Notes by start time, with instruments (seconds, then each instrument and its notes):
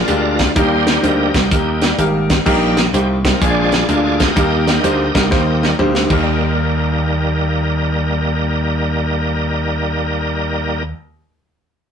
Already playing: grand piano A#2, tonewheel organ D4 F4 A#4
0.08 slap bass D2, grand piano G#3 A#3 D4 F4 G4, closed hi-hat
0.39 tonewheel organ C5, kick, snare, closed hi-hat
0.56 slap bass D#2, grand piano D#3 G3 A#3 D#4 G4 A#4, tonewheel organ G3 A#3 D#4 G4 C5, kick, closed hi-hat
0.87 snare, closed hi-hat
1.03 slap bass D2, grand piano G3 A#3 D#4 G4 C5, tonewheel organ D#4 G4 A#4, closed hi-hat
1.34 slap bass C2, kick, snare, closed hi-hat
1.51 slap bass D#2, grand piano G3 A#3 D#4 G4 A#4, kick, closed hi-hat
1.81 tonewheel organ G3 A#3 D#4, snare, closed hi-hat
1.98 slap bass G#1, grand piano G3 A#3 D#4 G4 A#4, closed hi-hat
2.30 kick, snare, closed hi-hat
2.45 slap bass A#1, grand piano A#2 G3 A#3 D#4 G4 A#4, tonewheel organ G3 A#3 D#4, kick, crash
2.77 snare, closed hi-hat
2.93 slap bass C2, grand piano G3 A#3 D#4 G4 C5, tonewheel organ G4, closed hi-hat
3.24 grand piano G3 A#3 D#4 G4 C5, tonewheel organ A#4, kick, snare, closed hi-hat
3.41 slap bass A#1, grand piano A#2 G#3 A#3 D4 F4 G#4, tonewheel organ G#3 C4 D4 F4 G#4 D5, kick, closed hi-hat
3.72 snare, closed hi-hat
3.89 slap bass D2, grand piano G#3 A#3 D4 F4 A#4, closed hi-hat
4.20 tonewheel organ G4 A#4 D#5, kick, snare, closed hi-hat
4.36 slap bass D#2, grand piano D#3 G3 A#3 D#4 G4 A#4, kick, closed hi-hat
4.67 tonewheel organ G3 A#3 D#4, snare, closed hi-hat
4.84 slap bass D2, grand piano G3 A#3 D#4 G4 C5, closed hi-hat
5.14 slap bass C2, grand piano G3 A#3 D#4 G4 A#4, kick, snare, closed hi-hat
5.31 slap bass D#2, grand piano G3 A#3 D#4 G4 C5, kick, snare
5.62 tonewheel organ G3 A#3 D#4, snare
5.79 slap bass D2, grand piano G3 A#3 D#4 G4 C5, mid tom
5.95 snare
6.08 grand piano D#2 A#3 D#4 G4 A#4, slap bass D#2, tonewheel organ G3 A#3 D#4 A#4, kick, crash